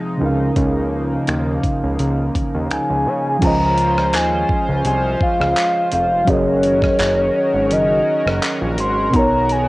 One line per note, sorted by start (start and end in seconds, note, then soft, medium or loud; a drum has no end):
0.00 0.18 C3 medium
0.00 0.15 F3 medium
0.00 3.38 F3 medium
0.00 0.18 G#3 medium
0.00 0.16 C4 medium
0.00 0.17 D#4 medium
0.00 3.38 D#4 medium
0.00 0.18 G#4 medium
0.00 0.19 F5 medium
0.17 0.52 C#2 medium
0.17 3.01 C#3 medium
0.17 3.39 C#3 medium
0.17 3.39 A#3 medium
0.17 3.02 C#4 medium
0.22 3.03 D#4 medium
0.22 3.04 A#4 medium
0.26 3.05 F5 medium
0.56 1.18 C#2 loud
0.56 kick loud
0.56 closed hi-hat medium
1.27 1.59 D#2 medium
1.27 finger snap loud
1.27 closed hi-hat medium
1.63 kick medium
1.63 closed hi-hat medium
1.83 1.97 C#2 medium
1.99 2.30 C#2 loud
1.99 closed hi-hat medium
2.35 2.43 D#2 soft
2.35 kick medium
2.35 closed hi-hat medium
2.54 2.69 D#2 medium
2.71 2.79 C#2 soft
2.71 3.46 G#5 loud
2.71 finger snap loud
2.71 closed hi-hat medium
2.90 3.08 C#2 medium
3.06 3.37 C#3 loud
3.39 4.15 C#2 loud
3.39 6.22 F3 medium
3.39 6.25 G#3 medium
3.39 6.23 C#4 medium
3.39 6.25 C#4 medium
3.39 6.25 F4 medium
3.39 6.25 C5 medium
3.39 kick loud
3.39 closed hi-hat medium
3.39 crash medium
3.43 6.24 F4 medium
3.43 6.25 C5 medium
3.43 4.17 A#5 loud
3.47 6.26 D#5 medium
3.78 closed hi-hat medium
3.98 cross-stick medium
4.13 4.44 D#2 loud
4.13 4.86 G#5 loud
4.13 clap loud
4.13 closed hi-hat medium
4.49 kick medium
4.69 4.83 C#2 medium
4.85 5.16 C2 loud
4.85 5.01 G#5 loud
4.85 closed hi-hat medium
5.21 5.89 F5 loud
5.21 kick medium
5.40 5.54 C#2 medium
5.40 cross-stick medium
5.56 clap loud
5.56 closed hi-hat medium
5.92 6.23 F1 medium
5.92 6.31 F5 medium
5.92 closed hi-hat medium
6.25 6.89 F#1 loud
6.25 9.11 D#3 medium
6.25 9.08 F#3 medium
6.25 9.09 C#4 medium
6.25 9.11 C#4 medium
6.25 9.68 F#4 medium
6.25 9.68 A#4 medium
6.25 kick loud
6.25 closed hi-hat medium
6.29 9.10 G#4 medium
6.29 9.11 A#4 medium
6.29 7.74 C#5 loud
6.33 9.12 D#5 medium
6.63 closed hi-hat medium
6.82 kick loud
6.82 cross-stick medium
6.99 7.30 F#1 medium
6.99 clap loud
6.99 closed hi-hat medium
7.54 7.72 G#1 medium
7.70 8.01 F#1 loud
7.70 8.43 D#5 medium
7.70 closed hi-hat medium
8.25 8.40 F#1 medium
8.25 cross-stick medium
8.42 clap loud
8.42 closed hi-hat medium
8.61 8.79 A#1 medium
8.78 9.09 G#1 medium
8.78 9.17 C6 loud
8.78 closed hi-hat medium
9.10 9.68 B1 loud
9.10 9.68 B2 medium
9.10 9.68 D#3 medium
9.10 9.68 B3 medium
9.10 kick loud
9.10 closed hi-hat medium
9.14 9.68 D#4 medium
9.14 9.68 A#4 medium
9.14 9.53 A#5 loud
9.18 9.68 C#5 medium
9.49 9.68 G#5 loud
9.49 closed hi-hat medium